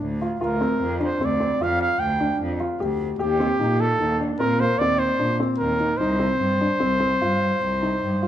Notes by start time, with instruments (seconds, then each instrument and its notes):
Already playing: grand piano D4
0.01 cello D2
0.22 grand piano F4
0.41 cello D2, grand piano F4, flugelhorn A#4
0.61 grand piano C4
0.81 cello F2
1.00 grand piano D4, flugelhorn C5
1.21 cello D2, grand piano C4, flugelhorn D5
1.40 grand piano C4
1.61 cello F2, grand piano F4, flugelhorn F5
1.81 flugelhorn F5
2.00 cello D2, flugelhorn G5
2.20 grand piano D4
2.41 cello F2
2.60 grand piano F4
2.80 cello D2, grand piano G4
3.19 cello D#2, flugelhorn G4, grand piano G4
3.40 grand piano C4
3.60 cello A#2, grand piano D#4
3.81 flugelhorn A4
4.00 cello D#2, grand piano D#4
4.20 grand piano D4
4.39 cello A#2, grand piano C4, flugelhorn A#4
4.60 grand piano A#3, flugelhorn C5
4.79 cello D#2, grand piano C4, flugelhorn D5
4.99 flugelhorn C5
5.19 cello A#2, grand piano D4
5.40 grand piano C4
5.58 cello D#2, flugelhorn A#4
5.80 grand piano D#4
5.98 cello C2, grand piano D#4, flugelhorn C5
6.19 grand piano C4
6.40 cello G2
6.61 grand piano D4
6.80 cello C2, grand piano C4
7.00 grand piano C4
7.21 cello G2, grand piano F4
7.62 cello C2
7.82 grand piano D#4
8.03 cello G2
8.22 grand piano F4